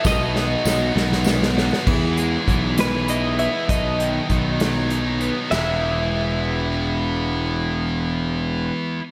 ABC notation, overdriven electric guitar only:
X:1
M:6/8
L:1/8
Q:3/8=66
K:E
V:1 name="Overdriven electric guitar"
B,, F D F B, F | E, G, E, G, E B, | B,, D, D, F, D B, | [E,G,B,E]6- |
[E,G,B,E]6 |]